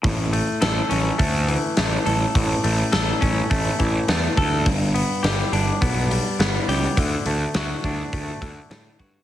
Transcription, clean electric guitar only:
X:1
M:4/4
L:1/8
Q:1/4=104
K:Amix
V:1 name="Clean electric guitar"
A,, A, A C A, E, A, A | A,, A, A C A, E, A, A | G,, B, G D B, G, B, G | D, A, F D A, D, A, F |]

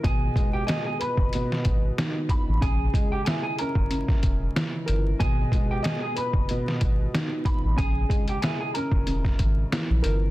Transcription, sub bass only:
X:1
M:4/4
L:1/16
Q:"Swing 16ths" 1/4=93
K:G#m
V:1 name="Sub bass" clef=bass
G,,,2 z4 z F,,, z2 G,,,2 z3 =A,,, | A,,,2 z4 z F,,, z E,,, E,,,2 z2 =G,,,2 | G,,,2 z4 z F,,, z2 G,,,2 z3 =A,,, | A,,,2 z4 z F,,, E,,,2 G,,,2 z A,,, =G,,,2 |]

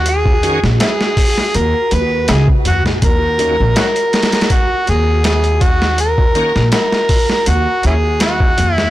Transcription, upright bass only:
X:1
M:4/4
L:1/16
Q:"Swing 16ths" 1/4=81
K:Ebm
V:1 name="Upright bass" clef=bass
E,,2 z B,,, z4 E,, z E,,2 D,, z E,, B,,, | E,,3 B,,, z6 E,,6- | E,,2 z B,,, z4 E,, z E,,4 E,,2 |]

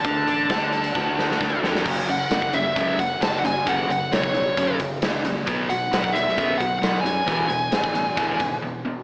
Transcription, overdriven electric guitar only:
X:1
M:4/4
L:1/8
Q:1/4=133
K:D
V:1 name="Overdriven electric guitar" clef=bass
D, D D A F D, D A | [K:F#m] [F,,C,F,] [F,,C,] [F,,C,] [F,,C,] [F,,C,F,] [F,,C,] [F,,C,] [F,,C,] | [F,,C,F,] [F,,C,] [F,,C,] [F,,C,] [F,,C,F,] [F,,C,] [F,,C,] [F,,C,] | [B,,F,B,] [B,,F,] [B,,F,] [B,,F,] [B,,F,B,] [B,,F,] [B,,F,] [B,,F,] |
[E,,B,,E,] [E,,B,,] [E,,B,,] [E,,B,,] [E,,B,,E,] [E,,B,,] [E,,B,,] [E,,B,,] |]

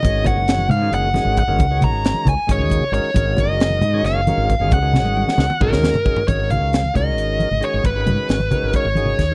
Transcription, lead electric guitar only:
X:1
M:7/8
L:1/8
Q:1/4=135
K:G#dor
V:1 name="Lead electric guitar"
d f2 e f2 f- | f a2 g c2 c- | c d3 e3 | f4 A3 |
c e2 d3 c | B4 c3 |]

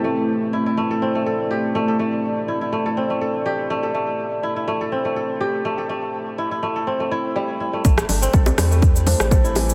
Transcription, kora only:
X:1
M:4/4
L:1/16
Q:"Swing 16ths" 1/4=123
K:Am
V:1 name="Kora"
A, z3 E E A, A C A, A z G z A, A | A, z3 E E A, A C A, A z G z A, A | A, z3 E E A, A C A, A z G z A, A | A, z3 E E A, A C A, E z G, z E A, |
A, z D C A z G, A, z2 D G, A E E, z |]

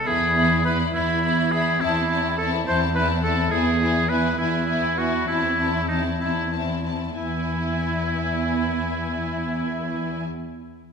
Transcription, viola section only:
X:1
M:6/8
L:1/8
Q:3/8=67
K:E
V:1 name="Viola section"
B, B, B, B, B, B, | =C C C C C C | B, B, B, B, B, B, | =C C C C C C |
B,6- | B,6 |]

